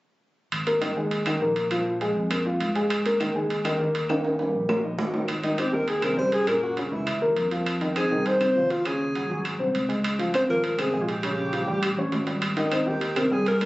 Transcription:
0.52 G#1, high timbale, claves
0.67 A#3 A#4, high timbale
0.81 D#3 D#4, high timbale, claves
0.96 D#2 G#3 G#4
1.11 high timbale
1.26 D#3 D#4, high timbale, claves
1.41 A#1 A#3 A#4
1.56 high timbale
1.71 F3 F4, high timbale, claves
2.01 G#3 G#4, high timbale
2.16 F2
2.31 A#3 A#4, high timbale, claves
2.45 F4 F5
2.60 G#2, high timbale
2.75 G#3 G#4, high timbale
2.90 high timbale, claves
3.06 A#3 A#4, high timbale
3.20 D#3 D#4, high timbale, claves
3.35 D#2 G#3 G#4
3.50 high timbale
3.65 D#3 D#4, high timbale, claves
3.79 D#2 A#3 A#4
3.95 high timbale
4.09 D#3 D#4, high timbale, claves
4.24 high timbale
4.39 G3 G4, high timbale
4.54 A#1
4.69 A#3 A#4, low timbale, claves
4.84 A#1 D#4 D#5
4.98 G#1, low timbale
5.14 D#3 D#4, low timbale
5.28 high timbale, claves
5.44 D#3 D#4, high timbale
5.58 C4 G4 C5, high timbale, claves
5.73 D#2 D#3 D#4 A#4
5.88 G#4, high timbale
6.02 C3 C4 A#4, high timbale, claves
6.17 F#2 G3 G4 C5
6.32 G#4, high timbale
6.47 A#2 A#3 A#4, high timbale, claves
6.63 F#4
6.77 C#3 C#4, high timbale
6.91 C#2 E3 E4
7.07 high timbale, claves
7.22 D#2 A#3 A#4
7.36 F2, high timbale
7.51 F3 F4, high timbale
7.66 high timbale, claves
7.81 D#3 D#4, high timbale
7.96 C4 G#4 C5, high timbale, claves
8.11 C2 D#3 D#4
8.26 C5, high timbale
8.40 C3 C4, high timbale, claves
8.56 D#2 F3 F4
8.70 F4, high timbale
8.85 C#3 C#4 G#4, high timbale, claves
9.15 F#3 F#4, high timbale
9.30 G#1 F#3 F#4
9.45 high timbale, claves
9.59 C2 C4 C5
9.74 C#2, high timbale
9.89 G#3 G#4, high timbale
10.04 high timbale, claves
10.19 F3 F4, high timbale
10.34 C4 C5, high timbale, claves
10.49 G#1 F3 F4 A#4
10.64 high timbale
10.78 C3 C4 G#4, high timbale, claves
10.93 A#1 G#3 G#4
11.02 F4
11.09 G4, high timbale
11.23 C#3 C#4, high timbale, claves
11.53 F3 F4, high timbale
11.68 A1 G3 G4
11.83 high timbale, claves
11.97 A1 C#4 C#5
12.12 G#1, high timbale, low timbale
12.27 G3 G4, high timbale
12.42 high timbale, claves
12.57 D#3 D#4, high timbale
12.72 C4 C5, high timbale, claves
12.86 D#2 D#3 D#4 G4
13.01 high timbale
13.16 C3 C4 A#4, high timbale, claves
13.31 G2 G3 G4 G#4
13.46 A#4, high timbale
13.61 A#2 A#3, high timbale, claves

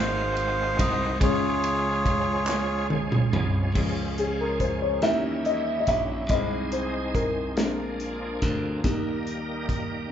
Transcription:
Already playing: G#1 G#2 D#3 G#3 C4 D#4 F#4 G#4 C5 F5
0.37 ride bell
0.79 C2 D#5, kick, ride bell
1.20 C#2 C#3 F3 G#3 C#4 F4 G#4 C#5, kick, ride bell
1.64 ride bell
2.06 kick, ride bell
2.47 snare, clap
2.90 high tom
3.12 mid tom
3.33 C2, mid tom
3.74 C#2 F3 G#3 C#4 G#4, kick, crash
4.18 G#4, closed hi-hat
4.41 A#4
4.60 C5, kick, closed hi-hat
4.82 C#5
5.02 D#2 E3 G3 C#4 D#4 E4 E5, snare, closed hi-hat
5.45 D#5, closed hi-hat
5.80 D#5
5.87 A#1 E5, kick, closed hi-hat
6.29 C2 D#3 G#3 C4 G#4 D#5, kick, closed hi-hat
6.72 C5, closed hi-hat
7.15 A#4, kick, closed hi-hat
7.56 A#1 D3 F3 G#3 A#3 C4 D4, snare, closed hi-hat
8.00 closed hi-hat
8.42 D2, kick, closed hi-hat
8.84 D#2 D#3 G3 A#3 D#4 A#4, kick, closed hi-hat
9.27 closed hi-hat
9.69 kick, closed hi-hat

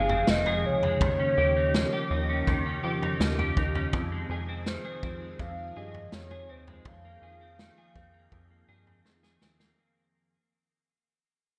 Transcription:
Already playing: G1 F2 C3 D#3 F3 G#3 D#4 G#4 F5
0.09 C4, floor tom
0.27 F1 D#3 D#5, snare
0.46 G#4, floor tom
0.64 C#2 C#5
0.83 G#3, floor tom
1.01 D#2 C#3 D#3 A#3 G4, kick, floor tom
1.19 C#4
1.38 D#2 G4
1.57 D#4
1.74 F3, snare
1.93 G4
2.11 D#2 D#4
2.29 C#4
2.47 D#2 D#3, kick, floor tom
2.66 C#4
2.84 F2 G4
3.02 D#4, floor tom
3.20 D#2 F3, snare
3.39 G4, floor tom
3.57 D#2 D#4, kick
3.75 C#4, floor tom
3.93 F2 C3 D#3 F3 G#4, kick, floor tom
4.12 G#3
4.29 F2 G#4
4.49 C4
4.66 D#3 C5, snare
4.85 G#4
5.03 F2 C4, kick
5.22 G#3
5.39 F2 F5, kick
5.76 G2 G#4 D#5
5.94 floor tom
6.12 F2 D#3 C#5, snare
6.31 G#4, floor tom
6.49 D#2 C4 C5
6.68 G#3, floor tom
6.85 F2 F3 A#3 G#4 F5 G5, kick, floor tom
7.05 A#3
7.22 F2 G#4
7.41 C4
7.59 D#3, snare
7.78 G#4
7.95 F2 C4, kick
8.14 A#3
8.32 F2, kick, floor tom
8.50 A#3
8.69 G2 G#4
8.87 C4, floor tom
9.05 F2 D#3, snare
9.23 G#4, snare
9.41 D#2 C4, snare
9.59 A#3, snare

